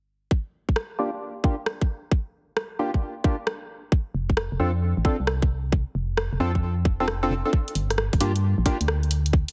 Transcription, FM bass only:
0, 0, Header, 1, 2, 480
1, 0, Start_track
1, 0, Key_signature, -2, "minor"
1, 0, Tempo, 451128
1, 331, Time_signature, 4, 2, 24, 8
1, 10132, End_track
2, 0, Start_track
2, 0, Title_t, "FM bass"
2, 0, Program_c, 0, 39
2, 4410, Note_on_c, 0, 29, 98
2, 4775, Note_off_c, 0, 29, 0
2, 4810, Note_on_c, 0, 29, 86
2, 4879, Note_off_c, 0, 29, 0
2, 4891, Note_on_c, 0, 41, 92
2, 5256, Note_off_c, 0, 41, 0
2, 5291, Note_on_c, 0, 33, 95
2, 5360, Note_off_c, 0, 33, 0
2, 5531, Note_on_c, 0, 36, 80
2, 6216, Note_off_c, 0, 36, 0
2, 6331, Note_on_c, 0, 29, 98
2, 6696, Note_off_c, 0, 29, 0
2, 6730, Note_on_c, 0, 29, 85
2, 6799, Note_off_c, 0, 29, 0
2, 6809, Note_on_c, 0, 41, 95
2, 7290, Note_on_c, 0, 29, 99
2, 7306, Note_off_c, 0, 41, 0
2, 7753, Note_off_c, 0, 29, 0
2, 7770, Note_on_c, 0, 29, 91
2, 7908, Note_off_c, 0, 29, 0
2, 8250, Note_on_c, 0, 31, 101
2, 8615, Note_off_c, 0, 31, 0
2, 8651, Note_on_c, 0, 31, 85
2, 8720, Note_off_c, 0, 31, 0
2, 8730, Note_on_c, 0, 43, 93
2, 9095, Note_off_c, 0, 43, 0
2, 9130, Note_on_c, 0, 34, 97
2, 9199, Note_off_c, 0, 34, 0
2, 9370, Note_on_c, 0, 38, 82
2, 10055, Note_off_c, 0, 38, 0
2, 10132, End_track
0, 0, End_of_file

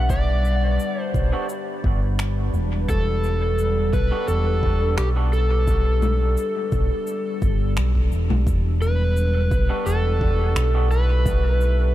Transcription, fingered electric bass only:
0, 0, Header, 1, 2, 480
1, 0, Start_track
1, 0, Key_signature, 1, "minor"
1, 0, Tempo, 697674
1, 66, Time_signature, 4, 2, 24, 8
1, 8219, End_track
2, 0, Start_track
2, 0, Title_t, "Fingered electric bass"
2, 0, Program_c, 0, 33
2, 0, Note_on_c, 0, 35, 78
2, 525, Note_off_c, 0, 35, 0
2, 786, Note_on_c, 0, 35, 71
2, 897, Note_off_c, 0, 35, 0
2, 1266, Note_on_c, 0, 31, 78
2, 1724, Note_off_c, 0, 31, 0
2, 1743, Note_on_c, 0, 28, 80
2, 1957, Note_off_c, 0, 28, 0
2, 1986, Note_on_c, 0, 28, 96
2, 2684, Note_off_c, 0, 28, 0
2, 2705, Note_on_c, 0, 35, 74
2, 2817, Note_off_c, 0, 35, 0
2, 2945, Note_on_c, 0, 28, 89
2, 3404, Note_off_c, 0, 28, 0
2, 3426, Note_on_c, 0, 35, 77
2, 4364, Note_off_c, 0, 35, 0
2, 4624, Note_on_c, 0, 35, 74
2, 4736, Note_off_c, 0, 35, 0
2, 5105, Note_on_c, 0, 31, 78
2, 5341, Note_off_c, 0, 31, 0
2, 5345, Note_on_c, 0, 35, 87
2, 5558, Note_off_c, 0, 35, 0
2, 5585, Note_on_c, 0, 28, 94
2, 5697, Note_off_c, 0, 28, 0
2, 5711, Note_on_c, 0, 35, 96
2, 5812, Note_off_c, 0, 35, 0
2, 5824, Note_on_c, 0, 28, 95
2, 6523, Note_off_c, 0, 28, 0
2, 6545, Note_on_c, 0, 35, 75
2, 6657, Note_off_c, 0, 35, 0
2, 6785, Note_on_c, 0, 28, 96
2, 7244, Note_off_c, 0, 28, 0
2, 7265, Note_on_c, 0, 35, 81
2, 8204, Note_off_c, 0, 35, 0
2, 8219, End_track
0, 0, End_of_file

